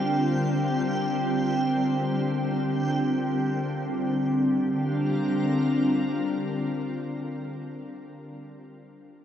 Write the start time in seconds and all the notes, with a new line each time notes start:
Already playing: D3 G3 C4 F4 A#4 G5
4.18 D3
4.30 G3
4.42 C4
4.54 F4
4.65 A#4